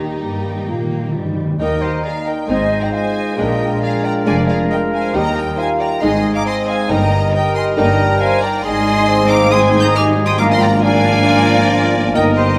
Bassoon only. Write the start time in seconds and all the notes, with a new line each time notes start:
1.59 D#4
2.92 F4
5.14 D#4
5.57 F4
6.02 D#4
6.45 C4
6.90 D#4
7.77 D4
9.08 C4
9.95 G#3
10.39 F4
10.83 D4
11.26 F4
11.70 F4
12.15 D#4